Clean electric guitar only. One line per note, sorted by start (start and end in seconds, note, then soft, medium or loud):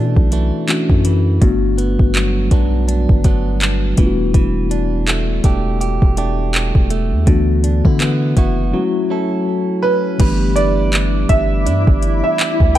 0.00 1.42 B2 medium
0.00 0.31 E3 medium
0.00 0.31 A3 medium
0.00 0.33 D4 medium
0.32 1.04 E3 medium
0.32 1.50 A3 medium
0.32 2.52 D4 medium
1.05 1.50 E3 medium
1.41 4.06 G2 medium
1.78 2.51 B3 medium
2.15 2.51 F#3 medium
2.51 3.24 F#3 medium
2.51 3.25 B3 medium
2.51 2.87 D4 medium
2.88 3.25 D4 medium
3.25 3.97 F#3 medium
3.25 5.07 B3 medium
3.25 4.37 D4 medium
3.98 4.34 E3 medium
4.34 7.30 E3 medium
4.71 5.44 D4 medium
5.07 5.44 A3 medium
5.44 6.17 A3 medium
5.44 6.18 D4 medium
5.44 5.80 G4 medium
5.81 6.17 G4 medium
6.17 6.90 A3 medium
6.17 7.36 D4 medium
6.17 7.36 G4 medium
6.91 8.00 A3 medium
7.27 8.82 D3 medium
7.64 7.85 D4 medium
7.85 8.37 E4 soft
8.01 8.36 B3 medium
8.37 8.82 B3 medium
8.37 9.11 E4 medium
8.37 8.83 F#4 medium
8.74 10.20 F#3 medium
9.10 9.82 C#4 medium
9.10 10.57 E4 medium
9.10 10.20 A4 medium
9.83 10.28 C#4 medium
10.20 12.78 G3 medium
10.20 10.57 B4 medium
10.56 10.93 D4 medium
10.56 12.39 E4 medium
10.56 12.76 B4 medium
10.93 11.66 D4 medium
11.66 12.78 D4 medium
12.40 12.78 E4 medium